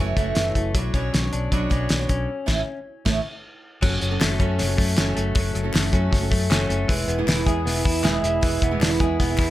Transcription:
Already playing: fingered electric bass F#1, clean electric guitar A3 C#4
0.00 clean electric guitar E3, steel-string acoustic guitar F#3 A3 E4 F#4 C#5
0.16 fingered electric bass F#1, steel-string acoustic guitar F#3 A3 E4 F#4 C#5, clean electric guitar A3, kick, closed hi-hat
0.35 fingered electric bass F#1, clean electric guitar E3, snare, closed hi-hat
0.48 steel-string acoustic guitar E4 F#4 C#5
0.55 fingered electric bass F#1, clean electric guitar A3, kick, closed hi-hat
0.75 fingered electric bass B1, clean electric guitar F#3, steel-string acoustic guitar B3 D4 F#4 C#5, kick, closed hi-hat
0.94 fingered electric bass B1, steel-string acoustic guitar B2 F#3 B3 D4 F#4 C#5, clean electric guitar C#4, kick, closed hi-hat
1.13 fingered electric bass B1, clean electric guitar F#3, snare, closed hi-hat
1.22 steel-string acoustic guitar B3 D4 F#4 C#5
1.33 fingered electric bass B1, clean electric guitar D4, closed hi-hat
1.52 fingered electric bass B1, steel-string acoustic guitar B2 F#3 B3 D4 F#4 C#5, clean electric guitar F#3, kick, closed hi-hat
1.69 fingered electric bass B1, steel-string acoustic guitar B2 F#3 B3 D4 F#4 C#5, clean electric guitar C#4, kick, closed hi-hat
1.89 fingered electric bass B1, clean electric guitar F#3, snare, closed hi-hat
1.98 steel-string acoustic guitar B3 D4 F#4 C#5
2.09 fingered electric bass B1, clean electric guitar C#4, kick, closed hi-hat
2.46 fingered electric bass A1, steel-string acoustic guitar A3 B3 E4 A4 C#5, kick, snare, crash
3.05 fingered electric bass A1, steel-string acoustic guitar A3 B3 E4 A4 C#5, kick, snare, crash
3.81 fingered electric bass F#1, steel-string acoustic guitar F#3 C#4 F#4 A4, clean electric guitar F#3, kick, crash
4.02 fingered electric bass F#1, clean electric guitar F#3, hi-hat pedal, open hi-hat
4.11 steel-string acoustic guitar F#3 C#4 F#4 A4
4.20 fingered electric bass F#1, clean electric guitar A3, snare, clap, hi-hat pedal, open hi-hat
4.39 fingered electric bass F#2, steel-string acoustic guitar F#3 C#4 F#4 A4, clean electric guitar C#4, kick, hi-hat pedal, open hi-hat
4.59 fingered electric bass F#1, clean electric guitar F#3, snare, hi-hat pedal, open hi-hat
4.68 steel-string acoustic guitar C#4 F#4 A4
4.77 fingered electric bass F#2, clean electric guitar A3, kick, hi-hat pedal, open hi-hat
4.97 fingered electric bass F#1, steel-string acoustic guitar F#3 C#4 F#4 A4, clean electric guitar C#4, snare, clap, hi-hat pedal, open hi-hat
5.16 fingered electric bass F#1, clean electric guitar A3, hi-hat pedal, open hi-hat
5.35 fingered electric bass F#1, clean electric guitar F#3, steel-string acoustic guitar F#3 C#4 F#4 A4, kick, hi-hat pedal, open hi-hat
5.55 fingered electric bass F#1, clean electric guitar F#3, hi-hat pedal, open hi-hat
5.63 steel-string acoustic guitar F#3 C#4 F#4 A4
5.74 fingered electric bass F#1, clean electric guitar A3, snare, clap, hi-hat pedal, open hi-hat
5.91 fingered electric bass F#2, steel-string acoustic guitar F#3 C#4 F#4 A4, clean electric guitar C#4, kick, hi-hat pedal, open hi-hat
6.11 fingered electric bass F#1, clean electric guitar F#3, kick, snare, hi-hat pedal, open hi-hat
6.20 steel-string acoustic guitar C#4 F#4 A4
6.31 fingered electric bass F#2, clean electric guitar A3, kick, hi-hat pedal, open hi-hat
6.50 fingered electric bass F#1, steel-string acoustic guitar F#3 C#4 F#4 A4, clean electric guitar C#4, snare, clap, hi-hat pedal, open hi-hat
6.69 fingered electric bass F#1, clean electric guitar A3, hi-hat pedal, open hi-hat
6.88 fingered electric bass E1, clean electric guitar E3, steel-string acoustic guitar G#3 B3 E4 G#4, kick, hi-hat pedal, open hi-hat
7.08 fingered electric bass E1, clean electric guitar B3, hi-hat pedal, open hi-hat
7.18 steel-string acoustic guitar E3 G#3 B3 E4 G#4
7.27 fingered electric bass E1, clean electric guitar E4, snare, clap, hi-hat pedal, open hi-hat
7.45 fingered electric bass E2, steel-string acoustic guitar G#3 B3 E4 G#4, clean electric guitar G#4, kick, hi-hat pedal, open hi-hat
7.65 fingered electric bass E1, clean electric guitar B3, snare, hi-hat pedal, open hi-hat
7.73 steel-string acoustic guitar B3 E4 G#4
7.85 fingered electric bass E2, clean electric guitar E4, kick, hi-hat pedal, open hi-hat
8.03 fingered electric bass E1, steel-string acoustic guitar E3 G#3 B3 E4 G#4, clean electric guitar G#4, snare, clap, hi-hat pedal, open hi-hat
8.23 fingered electric bass E1, clean electric guitar E4, hi-hat pedal, open hi-hat
8.41 fingered electric bass E1, clean electric guitar E3, steel-string acoustic guitar G#3 B3 E4 G#4, kick, hi-hat pedal, open hi-hat
8.62 fingered electric bass E1, clean electric guitar B3, kick, hi-hat pedal, open hi-hat
8.71 steel-string acoustic guitar E3 G#3 B3 E4 G#4
8.80 fingered electric bass E1, clean electric guitar D4, snare, clap, hi-hat pedal, open hi-hat
8.91 clean electric guitar E4
9.00 fingered electric bass E2, steel-string acoustic guitar G#3 B3 E4 G#4, clean electric guitar G#4, kick, hi-hat pedal, open hi-hat
9.20 fingered electric bass E1, clean electric guitar B3, kick, snare, hi-hat pedal, open hi-hat
9.29 steel-string acoustic guitar B3 E4 G#4
9.38 fingered electric bass E2, clean electric guitar E4, kick, clap, hi-hat pedal, open hi-hat

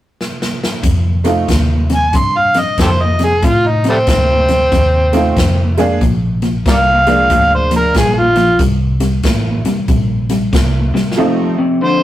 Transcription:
0.21 snare
0.42 snare
0.64 snare
0.83 clean electric guitar F2 C3, fingered electric bass F2, kick, closed hi-hat
1.24 clean electric guitar F2 C3, honky-tonk piano A3 C4 D#4 F4, snare, closed hi-hat
1.48 fingered electric bass D#2, clean electric guitar F2 D3, kick, snare, closed hi-hat
1.90 clean electric guitar F2 C3, snare, closed hi-hat
1.95 harmonica G#5
2.13 clean electric guitar F2 C3, fingered electric bass G2, harmonica C6, kick, closed hi-hat
2.38 harmonica F5
2.54 clean electric guitar F2 C3, snare, closed hi-hat
2.59 harmonica D#5
2.78 fingered electric bass F2, clean electric guitar F2 D3, harmonica G4 A4 C5, kick, snare, closed hi-hat
3.03 harmonica D#5
3.19 clean electric guitar F2 C3, snare, closed hi-hat
3.24 harmonica G#4
3.42 clean electric guitar F2 C3, fingered electric bass A2, kick, closed hi-hat
3.46 harmonica F4
3.67 harmonica D#4
3.84 clean electric guitar F2 C3, snare, closed hi-hat
3.89 harmonica G3 A3 C4
4.07 fingered electric bass D2, clean electric guitar F2 D3, kick, snare, closed hi-hat
4.48 clean electric guitar F2 C3, snare, closed hi-hat
4.72 fingered electric bass D#2, clean electric guitar F2 C3, kick, snare, closed hi-hat
5.13 clean electric guitar F2 C3, honky-tonk piano A3 C4 D#4 F4, snare, closed hi-hat
5.37 fingered electric bass F2, clean electric guitar F2 D3, kick, snare, closed hi-hat
5.77 clean electric guitar F2 C3, honky-tonk piano G#3 A#3 D4 G#4, snare, closed hi-hat
6.01 fingered electric bass A#1, clean electric guitar A#2 F3, kick, closed hi-hat
6.42 clean electric guitar A#2 F3, snare, closed hi-hat
6.66 fingered electric bass C2, clean electric guitar A#2 G3, harmonica A#4 D5 F5, kick, snare, closed hi-hat
7.07 clean electric guitar A#2 F3, honky-tonk piano G#3 A#3 D4 F4, snare, closed hi-hat
7.30 fingered electric bass D2, clean electric guitar A#2 F3, kick, closed hi-hat
7.55 harmonica C5
7.71 clean electric guitar A#2 F3, snare, closed hi-hat
7.76 harmonica A#4
7.94 fingered electric bass A#1, clean electric guitar A#2 G3, harmonica G#4, kick, snare, closed hi-hat
8.19 harmonica F4
8.36 clean electric guitar A#2 F3, snare, closed hi-hat
8.59 fingered electric bass C2, clean electric guitar C3 G3, kick, closed hi-hat
9.00 clean electric guitar C3 G3, snare, closed hi-hat
9.23 fingered electric bass A1, clean electric guitar C3 A3, kick, snare, closed hi-hat
9.65 clean electric guitar C3 G3, muted fingered electric bass stroke, snare, closed hi-hat
9.88 fingered electric bass A#1, clean electric guitar C3 G3, kick, closed hi-hat
10.29 clean electric guitar C3 G3, snare, closed hi-hat
10.53 fingered electric bass C2, clean electric guitar C3 A3, kick, snare, closed hi-hat
10.94 clean electric guitar C3 G3, snare
11.12 snare
11.16 clean electric guitar F2 C3, honky-tonk piano F3 A3 C4 D#4
11.58 clean electric guitar F2 C3
11.81 clean electric guitar F2 D3, harmonica C5

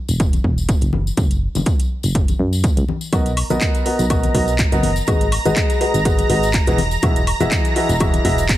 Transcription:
0.08 fm bass E1, closed hi-hat, tambourine
0.20 kick, closed hi-hat, tambourine
0.33 closed hi-hat, tambourine, high conga
0.44 fm bass E1, kick
0.58 tambourine
0.69 kick, closed hi-hat, tambourine
0.81 fm bass F#1, closed hi-hat, tambourine
0.93 high conga
1.07 tambourine
1.17 fm bass F#1, kick, closed hi-hat, tambourine
1.31 closed hi-hat, tambourine
1.55 fm bass F#1, closed hi-hat, tambourine, high conga
1.66 kick, closed hi-hat, tambourine
1.80 closed hi-hat, tambourine
2.03 fm bass F#1, closed hi-hat, tambourine
2.15 kick, closed hi-hat
2.28 closed hi-hat, tambourine, high conga
2.39 fm bass F#2
2.53 tambourine
2.63 kick, closed hi-hat, tambourine
2.77 fm bass C#2, closed hi-hat, tambourine
2.88 high conga
3.01 tambourine
3.13 fm bass B1, upright piano B3 F#4 A#4 B4 D#5, analog synth pad A#5, kick, closed hi-hat, tambourine, cabasa, high woodblock
3.26 closed hi-hat, tambourine, cabasa
3.37 open hi-hat, high woodblock
3.50 fm bass B1, upright piano B3 F#4 A#4 B4 D#5, tambourine, high conga, cabasa
3.61 kick, clap, closed hi-hat, tambourine, cabasa
3.74 closed hi-hat, tambourine, cabasa
3.86 upright piano B3 F#4 A#4 B4 D#5, open hi-hat
3.99 fm bass B1, closed hi-hat, tambourine, cabasa
4.10 upright piano B3 F#4 A#4 B4 D#5, kick, closed hi-hat, tambourine, cabasa, high woodblock
4.23 closed hi-hat, tambourine, high conga, cabasa
4.35 fm bass B1, upright piano B3 F#4 A#4 B4 D#5, kick, open hi-hat
4.48 tambourine, cabasa
4.59 kick, clap, closed hi-hat, tambourine, cabasa
4.72 fm bass F#1, upright piano B3 F#4 A#4 B4 D#5, closed hi-hat, tambourine, cabasa
4.83 open hi-hat, high conga
4.96 tambourine, cabasa
5.07 fm bass G#1, upright piano G#3 F#4 G#4 B4 D#5, kick, closed hi-hat, tambourine, cabasa, high woodblock
5.21 closed hi-hat, tambourine, cabasa
5.32 open hi-hat, high woodblock
5.45 fm bass G#1, upright piano G#3 F#4 G#4 B4 D#5, closed hi-hat, tambourine, high conga, cabasa
5.56 kick, clap, closed hi-hat, cabasa
5.70 closed hi-hat, tambourine, cabasa
5.81 upright piano G#3 F#4 G#4 B4 D#5, open hi-hat
5.94 fm bass G#1, closed hi-hat, tambourine, cabasa
6.05 upright piano G#3 F#4 G#4 B4 D#5, kick, closed hi-hat, tambourine, cabasa
6.18 closed hi-hat, tambourine, high conga, cabasa
6.30 fm bass G#1, upright piano G#3 F#4 G#4 B4 D#5, open hi-hat
6.43 tambourine, cabasa
6.53 kick, clap, closed hi-hat, tambourine, cabasa
6.66 fm bass E1, upright piano E3 F#4 G#4 B4 D#5, closed hi-hat, tambourine, cabasa
6.78 open hi-hat, high conga
6.91 tambourine, cabasa
7.02 fm bass E1, upright piano E3 F#4 G#4 D#5 E5, kick, closed hi-hat, tambourine, cabasa, high woodblock
7.16 closed hi-hat, tambourine, cabasa
7.27 open hi-hat, high woodblock
7.40 fm bass E1, upright piano E3 F#4 G#4 D#5 E5, closed hi-hat, tambourine, high conga, cabasa
7.51 kick, clap, closed hi-hat, tambourine, cabasa
7.65 closed hi-hat, tambourine, cabasa
7.76 upright piano E3 F#4 G#4 D#5 E5, open hi-hat
7.89 fm bass E1, closed hi-hat, tambourine, cabasa
8.00 upright piano E3 F#4 G#4 D#5 E5, kick, closed hi-hat, tambourine, cabasa, high woodblock
8.13 closed hi-hat, tambourine, high conga, cabasa
8.25 fm bass E1, upright piano E3 F#4 G#4 D#5 E5, kick, open hi-hat
8.38 tambourine, cabasa
8.49 kick, clap, closed hi-hat, tambourine, cabasa

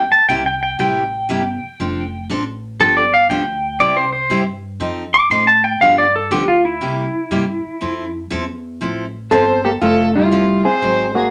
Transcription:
Already playing: pedal steel guitar G5
0.12 pedal steel guitar A5, muted upright bass stroke
0.29 upright bass C2, steel-string acoustic guitar C3 G3 A#3 E4 G4, pedal steel guitar G5
0.46 pedal steel guitar G5
0.63 pedal steel guitar G5
0.79 upright bass A1, steel-string acoustic guitar C3 G3 A#3 E4 G4, pedal steel guitar G5
1.29 upright bass G1, steel-string acoustic guitar C3 G3 A#3 E4 G4
1.63 muted upright bass stroke
1.80 upright bass F1, steel-string acoustic guitar F3 C4 D4 A4
2.30 upright bass A1, steel-string acoustic guitar F3 C4 D4 A4
2.80 upright bass G1, steel-string acoustic guitar D3 F3 B3 D4 G4, pedal steel guitar A4
2.97 pedal steel guitar D5
3.14 pedal steel guitar F5
3.29 upright bass D2, steel-string acoustic guitar D3 F3 B3 D4 G4, pedal steel guitar G5
3.80 upright bass C2, steel-string acoustic guitar C3 G3 C4 E4 G4, pedal steel guitar D5
3.97 pedal steel guitar C5
4.13 pedal steel guitar C5
4.30 upright bass G2, steel-string acoustic guitar C3 G3 C4 E4 G4
4.80 upright bass F2, steel-string acoustic guitar F3 C4 D#4 A4
5.14 pedal steel guitar D6
5.30 upright bass A2, steel-string acoustic guitar F3 C4 D#4 A4, pedal steel guitar C6
5.47 pedal steel guitar A5
5.64 pedal steel guitar G5
5.80 upright bass G2, steel-string acoustic guitar D3 F3 B3 D4 G4, pedal steel guitar F5
5.98 pedal steel guitar D5
6.16 pedal steel guitar A4
6.31 upright bass D2, steel-string acoustic guitar D3 F3 B3 D4 G4, pedal steel guitar G4
6.48 pedal steel guitar F4
6.65 pedal steel guitar E4
6.81 upright bass C2, steel-string acoustic guitar C3 G3 A#3 E4 G4
7.14 muted upright bass stroke
7.31 upright bass G2, steel-string acoustic guitar C3 G3 A#3 E4 G4
7.65 muted upright bass stroke
7.81 upright bass F2, steel-string acoustic guitar F3 C4 E4 A4
8.30 upright bass E2, steel-string acoustic guitar F3 C4 E4 A4
8.81 upright bass A1, steel-string acoustic guitar F3 C4 E4 A4
9.31 upright bass G1, steel-string acoustic guitar F3 C4 E4 A4, hollow-body jazz guitar C4 A4, fiddle C5
9.65 hollow-body jazz guitar A#3 G4, fiddle A4
9.81 upright bass F1, steel-string acoustic guitar F3 C4 E4 A4, hollow-body jazz guitar A3 F4, fiddle A4
10.15 hollow-body jazz guitar G3 E4, fiddle F4
10.32 steel-string acoustic guitar F3 C4 E4 A4
10.65 hollow-body jazz guitar C4 G#4, fiddle C5
10.82 upright bass G#1, steel-string acoustic guitar D#3 F#3 C4 D#4 G#4
11.15 hollow-body jazz guitar A#3 F#4, fiddle G#4

